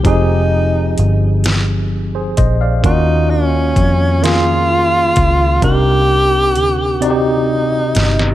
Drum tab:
HH |x---x-x---x-|x---x-x---x-|x---x-x---x-|
SD |------o-----|------o-----|----------oo|
BD |o---------o-|o---o-----o-|o-----------|